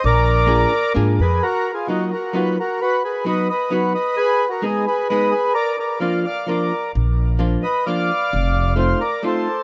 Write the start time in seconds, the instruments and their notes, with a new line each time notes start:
0.04 upright bass A#1, accordion A#4 D5
0.46 hollow-body jazz guitar A#3 D4 F4 G#4
0.94 upright bass G#2, hollow-body jazz guitar A#3 D4 F4 G#4
1.20 upright bass F2, accordion G#4 B4
1.43 accordion F#4 A#4
1.74 accordion F4 G#4
1.88 hollow-body jazz guitar F#3 A#3 D#4 F4, accordion D#4 F#4
2.12 accordion F#4 A#4
2.33 hollow-body jazz guitar F#3 A#3 D#4 F4, accordion F#4 B4
2.60 accordion F#4 A#4
2.82 accordion F#4 B4
3.04 accordion G#4 B4
3.25 hollow-body jazz guitar F#3 B3 D#4 F#4, accordion B4 D#5
3.50 accordion B4 D#5
3.70 hollow-body jazz guitar F#3 B3 D#4 F#4, accordion F#4 B4
3.95 accordion B4 D#5
4.17 accordion G#4 B4
4.49 accordion F#4 A#4
4.62 hollow-body jazz guitar G#3 B3 D#4 G#4, accordion D#4 G#4
4.87 accordion G#4 B4
5.09 hollow-body jazz guitar G#3 B3 D#4 G#4, accordion B4 D#5
5.31 accordion G#4 B4
5.54 accordion A#4 D5
5.79 accordion A#4 D5
6.00 hollow-body jazz guitar F3 A#3 D4 F4, accordion D5 F5
6.25 accordion D5 F5
6.46 hollow-body jazz guitar F3 A#3 D4 F4, accordion A#4 D5
6.95 upright bass A#1
7.39 hollow-body jazz guitar F3 A#3 D4 F4
7.63 accordion B4 D#5
7.86 hollow-body jazz guitar F3 A#3 D4 F4, accordion D5 F5
8.33 upright bass F1
8.76 hollow-body jazz guitar A3 C4 D#4 F4, accordion C5 F5
9.01 accordion A#4 D5
9.23 hollow-body jazz guitar A3 C4 D#4 F4, accordion A4 C5